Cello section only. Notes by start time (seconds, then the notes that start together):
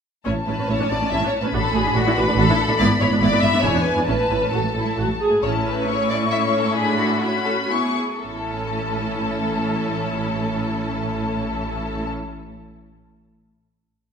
0.26 A2
0.47 A2
0.58 A2
0.69 A2
0.79 A2
0.90 A2
1.00 A2
1.11 A2
1.20 A2
1.41 A2
1.52 A2
1.73 A2
1.85 A2
1.95 A2
2.06 A2
2.17 A2
2.28 A2
2.37 A2
2.49 A2
2.69 A2
2.80 G#2
3.00 G#2
3.11 G#2
3.21 G#2
3.32 G#2
3.42 G#2
3.52 G#2
3.63 E2
3.75 E2
3.96 E2
4.07 A2
4.30 A2
4.42 A2
4.52 A2
4.63 A2
4.74 A2
4.85 A2
4.96 A2
5.07 A2
5.30 A2
5.40 A2
8.20 A2